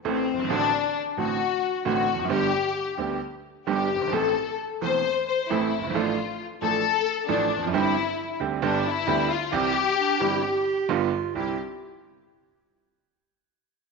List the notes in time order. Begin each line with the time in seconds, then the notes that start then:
0.05 A1 A2 E3 A3 C4 A4
0.33 F#1
0.39 G1
0.44 G#1
0.49 A1 A2 D3 A3 C4 D4 F#4
1.17 A1 A2 D3 A3 C4 F#4
1.85 A1 A2 D3 A3 C4 F#4
2.13 E2
2.19 F2
2.25 F#2
2.29 G1 G2 D3 G3 B3 G4
2.98 D2 D3 G3 B3 G4
3.66 G1 G2 D3 G3 B3 G4
3.95 F#1
4.01 G1
4.07 G#1
4.12 A1 A2 E3 A3 C4 A4
4.81 E1 E2 E3 A3 C4 A4 C5
5.28 C5
5.50 A1 A2 E3 A3 C4 E4 A4
5.79 F#1
5.84 G1
5.90 G#1
5.94 A1 A2 F3 A3 D4 F4 A4
6.62 A1 A2 F3 A3 D4 A4
7.28 A1 A2 F3 A3 D4 A4
7.56 E2
7.62 F2
7.67 F#2
7.73 G1 G2 D3 G3 C4 E4 G4
8.40 D2 D3 G3 C4 G4
8.62 G1 G2 D3 G3 B3 D4 G4
8.86 E4
9.07 D2 D3 G3 B3 G4
9.30 F4
9.52 C2 C3 E3 G3 C4 G4
9.98 D4
10.20 G1 G2 E3 G3 C4 E4 G4
10.43 G4
10.89 G1 G2 D3 G3 B3 F4
11.35 C2 G3 C4 E4 G4